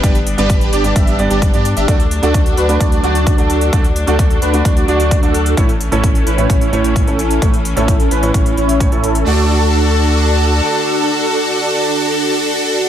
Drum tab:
HH |xxxxxxxxxxxxxxxx|xxxxxxxxxxxxxxxx|xxxxxxxxxxxxxxxx|xxxxxxxxxxxxxxxx|
BD |o---o---o---o---|o---o---o---o---|o---o---o---o---|o---o---o---o---|

HH |xxxxxxxxxxxxxxxx|----------------|----------------|
BD |o---o---o---o---|----------------|----------------|